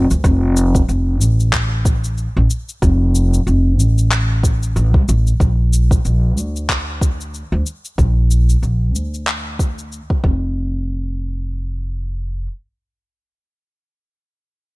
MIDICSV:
0, 0, Header, 1, 3, 480
1, 0, Start_track
1, 0, Key_signature, -1, "major"
1, 0, Tempo, 645161
1, 180, Time_signature, 4, 2, 24, 8
1, 10978, End_track
2, 0, Start_track
2, 0, Title_t, "Upright bass"
2, 0, Program_c, 0, 32
2, 81, Note_on_c, 0, 38, 82
2, 144, Note_off_c, 0, 38, 0
2, 179, Note_on_c, 0, 29, 96
2, 600, Note_off_c, 0, 29, 0
2, 659, Note_on_c, 0, 29, 80
2, 901, Note_off_c, 0, 29, 0
2, 901, Note_on_c, 0, 33, 85
2, 1678, Note_off_c, 0, 33, 0
2, 1760, Note_on_c, 0, 33, 88
2, 1824, Note_off_c, 0, 33, 0
2, 2100, Note_on_c, 0, 29, 97
2, 2521, Note_off_c, 0, 29, 0
2, 2579, Note_on_c, 0, 29, 81
2, 2821, Note_off_c, 0, 29, 0
2, 2821, Note_on_c, 0, 33, 88
2, 3536, Note_off_c, 0, 33, 0
2, 3541, Note_on_c, 0, 33, 89
2, 3677, Note_off_c, 0, 33, 0
2, 3677, Note_on_c, 0, 36, 79
2, 3742, Note_off_c, 0, 36, 0
2, 3784, Note_on_c, 0, 33, 96
2, 3948, Note_off_c, 0, 33, 0
2, 4019, Note_on_c, 0, 34, 85
2, 4440, Note_off_c, 0, 34, 0
2, 4501, Note_on_c, 0, 34, 79
2, 4738, Note_off_c, 0, 34, 0
2, 4738, Note_on_c, 0, 38, 84
2, 5517, Note_off_c, 0, 38, 0
2, 5596, Note_on_c, 0, 38, 86
2, 5662, Note_off_c, 0, 38, 0
2, 5939, Note_on_c, 0, 34, 91
2, 6360, Note_off_c, 0, 34, 0
2, 6417, Note_on_c, 0, 34, 74
2, 6658, Note_off_c, 0, 34, 0
2, 6658, Note_on_c, 0, 38, 78
2, 7437, Note_off_c, 0, 38, 0
2, 7617, Note_on_c, 0, 29, 80
2, 9269, Note_off_c, 0, 29, 0
2, 10978, End_track
3, 0, Start_track
3, 0, Title_t, "Drums"
3, 78, Note_on_c, 9, 82, 42
3, 153, Note_off_c, 9, 82, 0
3, 179, Note_on_c, 9, 36, 107
3, 181, Note_on_c, 9, 82, 32
3, 253, Note_off_c, 9, 36, 0
3, 255, Note_off_c, 9, 82, 0
3, 421, Note_on_c, 9, 82, 78
3, 496, Note_off_c, 9, 82, 0
3, 556, Note_on_c, 9, 36, 99
3, 560, Note_on_c, 9, 82, 47
3, 631, Note_off_c, 9, 36, 0
3, 634, Note_off_c, 9, 82, 0
3, 661, Note_on_c, 9, 82, 32
3, 736, Note_off_c, 9, 82, 0
3, 901, Note_on_c, 9, 82, 76
3, 976, Note_off_c, 9, 82, 0
3, 1042, Note_on_c, 9, 82, 42
3, 1116, Note_off_c, 9, 82, 0
3, 1139, Note_on_c, 9, 36, 60
3, 1139, Note_on_c, 9, 39, 73
3, 1142, Note_on_c, 9, 82, 30
3, 1213, Note_off_c, 9, 36, 0
3, 1213, Note_off_c, 9, 39, 0
3, 1216, Note_off_c, 9, 82, 0
3, 1379, Note_on_c, 9, 36, 101
3, 1382, Note_on_c, 9, 82, 74
3, 1453, Note_off_c, 9, 36, 0
3, 1456, Note_off_c, 9, 82, 0
3, 1519, Note_on_c, 9, 82, 42
3, 1594, Note_off_c, 9, 82, 0
3, 1619, Note_on_c, 9, 82, 34
3, 1694, Note_off_c, 9, 82, 0
3, 1861, Note_on_c, 9, 82, 67
3, 1936, Note_off_c, 9, 82, 0
3, 2000, Note_on_c, 9, 82, 44
3, 2074, Note_off_c, 9, 82, 0
3, 2099, Note_on_c, 9, 36, 116
3, 2103, Note_on_c, 9, 82, 33
3, 2174, Note_off_c, 9, 36, 0
3, 2178, Note_off_c, 9, 82, 0
3, 2343, Note_on_c, 9, 82, 78
3, 2418, Note_off_c, 9, 82, 0
3, 2482, Note_on_c, 9, 82, 49
3, 2556, Note_off_c, 9, 82, 0
3, 2584, Note_on_c, 9, 82, 31
3, 2658, Note_off_c, 9, 82, 0
3, 2825, Note_on_c, 9, 82, 74
3, 2899, Note_off_c, 9, 82, 0
3, 2961, Note_on_c, 9, 82, 43
3, 3036, Note_off_c, 9, 82, 0
3, 3061, Note_on_c, 9, 39, 71
3, 3064, Note_on_c, 9, 82, 30
3, 3136, Note_off_c, 9, 39, 0
3, 3139, Note_off_c, 9, 82, 0
3, 3299, Note_on_c, 9, 36, 96
3, 3306, Note_on_c, 9, 82, 79
3, 3374, Note_off_c, 9, 36, 0
3, 3380, Note_off_c, 9, 82, 0
3, 3443, Note_on_c, 9, 82, 46
3, 3518, Note_off_c, 9, 82, 0
3, 3544, Note_on_c, 9, 82, 33
3, 3618, Note_off_c, 9, 82, 0
3, 3677, Note_on_c, 9, 36, 99
3, 3751, Note_off_c, 9, 36, 0
3, 3783, Note_on_c, 9, 82, 70
3, 3858, Note_off_c, 9, 82, 0
3, 3922, Note_on_c, 9, 82, 43
3, 3996, Note_off_c, 9, 82, 0
3, 4019, Note_on_c, 9, 36, 110
3, 4024, Note_on_c, 9, 82, 33
3, 4093, Note_off_c, 9, 36, 0
3, 4098, Note_off_c, 9, 82, 0
3, 4263, Note_on_c, 9, 82, 77
3, 4338, Note_off_c, 9, 82, 0
3, 4397, Note_on_c, 9, 36, 98
3, 4402, Note_on_c, 9, 82, 45
3, 4471, Note_off_c, 9, 36, 0
3, 4477, Note_off_c, 9, 82, 0
3, 4502, Note_on_c, 9, 82, 32
3, 4576, Note_off_c, 9, 82, 0
3, 4743, Note_on_c, 9, 82, 77
3, 4817, Note_off_c, 9, 82, 0
3, 4882, Note_on_c, 9, 82, 43
3, 4956, Note_off_c, 9, 82, 0
3, 4979, Note_on_c, 9, 36, 60
3, 4982, Note_on_c, 9, 39, 70
3, 4986, Note_on_c, 9, 82, 30
3, 5053, Note_off_c, 9, 36, 0
3, 5057, Note_off_c, 9, 39, 0
3, 5060, Note_off_c, 9, 82, 0
3, 5219, Note_on_c, 9, 36, 100
3, 5225, Note_on_c, 9, 82, 76
3, 5293, Note_off_c, 9, 36, 0
3, 5300, Note_off_c, 9, 82, 0
3, 5362, Note_on_c, 9, 82, 44
3, 5437, Note_off_c, 9, 82, 0
3, 5463, Note_on_c, 9, 82, 33
3, 5537, Note_off_c, 9, 82, 0
3, 5701, Note_on_c, 9, 82, 68
3, 5776, Note_off_c, 9, 82, 0
3, 5839, Note_on_c, 9, 82, 43
3, 5913, Note_off_c, 9, 82, 0
3, 5938, Note_on_c, 9, 36, 109
3, 5941, Note_on_c, 9, 82, 31
3, 6013, Note_off_c, 9, 36, 0
3, 6016, Note_off_c, 9, 82, 0
3, 6181, Note_on_c, 9, 82, 74
3, 6256, Note_off_c, 9, 82, 0
3, 6319, Note_on_c, 9, 82, 44
3, 6394, Note_off_c, 9, 82, 0
3, 6421, Note_on_c, 9, 82, 31
3, 6496, Note_off_c, 9, 82, 0
3, 6662, Note_on_c, 9, 82, 69
3, 6737, Note_off_c, 9, 82, 0
3, 6802, Note_on_c, 9, 82, 39
3, 6876, Note_off_c, 9, 82, 0
3, 6899, Note_on_c, 9, 39, 63
3, 6902, Note_on_c, 9, 82, 30
3, 6973, Note_off_c, 9, 39, 0
3, 6976, Note_off_c, 9, 82, 0
3, 7137, Note_on_c, 9, 36, 91
3, 7141, Note_on_c, 9, 82, 75
3, 7212, Note_off_c, 9, 36, 0
3, 7216, Note_off_c, 9, 82, 0
3, 7281, Note_on_c, 9, 82, 41
3, 7355, Note_off_c, 9, 82, 0
3, 7383, Note_on_c, 9, 82, 31
3, 7457, Note_off_c, 9, 82, 0
3, 7515, Note_on_c, 9, 36, 92
3, 7590, Note_off_c, 9, 36, 0
3, 7617, Note_on_c, 9, 36, 99
3, 7691, Note_off_c, 9, 36, 0
3, 10978, End_track
0, 0, End_of_file